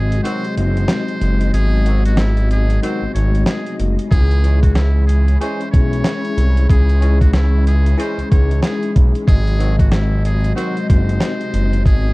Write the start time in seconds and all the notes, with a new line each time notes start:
Already playing: G#1 C3 F#3 G#3 C4 F#4 G#4 D#5
0.12 closed hi-hat
0.23 D#3 F#3 C4 F#4 C5, closed hi-hat
0.44 closed hi-hat
0.55 F#1 G#3 C4 D#4 C5, closed hi-hat
0.59 F#4
0.77 closed hi-hat
0.88 snare, clap, closed hi-hat
1.08 closed hi-hat
1.21 F#1, closed hi-hat
1.41 closed hi-hat
1.51 G#1 G#3 B3 G#4 D#5, closed hi-hat
1.55 C4 F#4
1.86 D#3 F#3 C4 F#4, closed hi-hat
2.05 F#4, closed hi-hat
2.17 E4, snare, clap, closed hi-hat
2.37 closed hi-hat
2.51 G#4, closed hi-hat
2.70 closed hi-hat
2.83 D#3 F#3 C4 F#4 C5, closed hi-hat
3.02 G#1
3.12 G#1 G#3 A3 D#4 C#5, closed hi-hat
3.17 F#4
3.35 closed hi-hat
3.46 G#4, snare, clap, closed hi-hat
3.66 closed hi-hat
3.79 F#1, closed hi-hat
3.99 closed hi-hat
4.08 C#2 E3 G#3 C#4 E4 G#4, kick
4.12 G#4, closed hi-hat
4.31 closed hi-hat
4.44 E3 G#3 C#4 G#4, closed hi-hat
4.63 F#4, kick, closed hi-hat
4.75 E4, snare, clap, closed hi-hat
5.07 G#4, closed hi-hat
5.28 closed hi-hat
5.41 E3 G#3 C#4 G#4 C5, closed hi-hat
5.61 closed hi-hat
5.71 B1 G#3 C#4 E4 C#5, kick, closed hi-hat
5.76 G#4
5.93 closed hi-hat
6.04 snare, clap, closed hi-hat
6.25 closed hi-hat
6.37 C2, closed hi-hat
6.57 closed hi-hat
6.67 C#2 G#3 C#4 E4 G#4, kick, closed hi-hat
6.72 G#4
6.89 closed hi-hat
7.01 E3 G#3 C#4 G#4, closed hi-hat
7.21 F#4, kick, closed hi-hat
7.33 E4, snare, clap, closed hi-hat
7.67 G#4, closed hi-hat
7.86 closed hi-hat
7.98 E3 G#3 C#4 G#4 C5, closed hi-hat
8.18 C#2, closed hi-hat
8.29 C#2 G#3 C#4 D#4 C#5, kick, closed hi-hat
8.33 G#4
8.38 E4
8.51 closed hi-hat
8.63 G#4, snare, clap, closed hi-hat
8.83 closed hi-hat
8.96 B1, kick, closed hi-hat
9.15 closed hi-hat
9.24 G#1 G#3 C4 G#4 D#5, kick
9.28 C3 F#3 F#4 D#5, closed hi-hat
9.47 closed hi-hat
9.59 D#3 F#3 C4 F#4, closed hi-hat
9.79 F#4, kick, closed hi-hat
9.92 E4, snare, clap, closed hi-hat
10.25 G#4, closed hi-hat
10.44 closed hi-hat
10.56 D#3 F#3 C4 F#4 C5, closed hi-hat
10.77 closed hi-hat
10.88 F#1 G#3 C4 D#4 C5, kick, closed hi-hat
10.92 F#4
11.09 closed hi-hat
11.21 snare, clap, closed hi-hat
11.41 closed hi-hat
11.54 F#1, closed hi-hat
11.73 closed hi-hat
11.83 G#1 G#3 B3 G#4 D#5, kick, closed hi-hat
11.88 C4 F#4